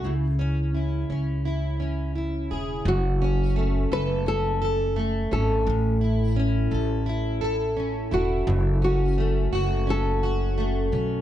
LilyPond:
<<
  \new Staff \with { instrumentName = "Nylon-string guitar" } { \time 4/4 \key fis \minor \tempo 4 = 85 e'2.~ e'8 r8 | fis'4. b'8 a'4. a'8~ | a'2~ a'8 r4 fis'8~ | fis'8 fis'4. a'2 | }
  \new Staff \with { instrumentName = "Steel-string acoustic guitar" } { \time 4/4 \key fis \minor cis8 cis'8 e'8 cis'8 e'8 cis'8 e'8 gis'8 | fis,8 cis'8 a8 a'8 cis'8 a'8 a8 cis'8 | a,8 e'8 cis'8 a'8 e'8 a'8 cis'8 e'8 | fis,8 cis'8 a8 fis'8 cis'8 fis'8 a8 cis'8 | }
  \new Staff \with { instrumentName = "Upright bass" } { \clef bass \time 4/4 \key fis \minor cis,4. cis,2 e,,8 | fis,,4. fis,,2 gis,,8 | a,,4. a,,2 e,,8 | fis,,4. fis,,2 b,,8 | }
>>